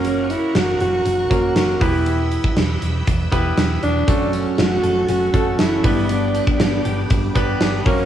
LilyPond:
<<
  \new Staff \with { instrumentName = "String machine" } { \time 4/4 \key g \lydian \tempo 4 = 119 <bes' fis'' cis'''>2.~ <bes' fis'' cis'''>8 <b' g'' e'''>8~ | <b' g'' e'''>1 | <a' fis'' cis'''>2.~ <a' fis'' cis'''>8 <b' g'' d'''>8~ | <b' g'' d'''>2.~ <b' g'' d'''>8 <ais' fis'' cis'''>8 | }
  \new Staff \with { instrumentName = "Alto saxophone" } { \time 4/4 \key g \lydian cis'8 e'8 fis'8 fis'4. fis'8 e'8~ | e'4 r2 r8 d'8~ | d'8 r8 fis'4 fis'4 e'4 | d'4. r2 cis'8 | }
  \new Staff \with { instrumentName = "Grand piano" } { \time 4/4 \key g \lydian <ais cis' fis' ais'>4 r4. <ais cis' fis' ais'>4 <e b e' g' b'>8~ | <e b e' g' b'>4 r4. <b e' g' b'>4 r8 | <a cis' fis' a'>4. r4 <a cis' fis' a'>4 <g, b d' g' b'>8~ | <g, b d' g' b'>4 r4. <b d' g' b'>4 <ais cis' fis' ais'>8 | }
  \new Staff \with { instrumentName = "Clean electric guitar" } { \time 4/4 \key g \lydian r1 | r1 | fis8 cis'8 a8 a'8 cis'8 a'8 cis'8 b8 | b8 d'8 b8 g'8 d'8 g'8 d'8 ais8 | }
  \new Staff \with { instrumentName = "Fingered electric bass" } { \clef bass \time 4/4 \key g \lydian fis,,4 fis,,8 fis,,8 fis,,8 fis,,8 fis,,8 e,,8~ | e,,4 e,,8 e,,8 e,,8 e,,8 e,,8 e,,8 | fis,,4 fis,,8 fis,,8 fis,,8 fis,,8 fis,,8 g,,8~ | g,,4 g,,8 g,,8 g,,8 g,,8 g,,8 fis,,8 | }
  \new DrumStaff \with { instrumentName = "Drums" } \drummode { \time 4/4 hh8 hh8 <hh sn>8 hh8 hh8 <hh bd>8 <hh sn>8 <hho bd>8 | hh8 hh16 bd16 <hh sn>8 hh8 <hh bd>8 <hh bd>8 <hh sn>8 hh8 | <hh bd>8 hh8 <hh sn>8 hh8 hh8 <hh bd>8 <hh sn>8 <hho bd>8 | hh8 hh16 bd16 <hh sn>8 hh8 <hh bd>8 <hh bd>8 <hh sn>8 <hho bd>8 | }
>>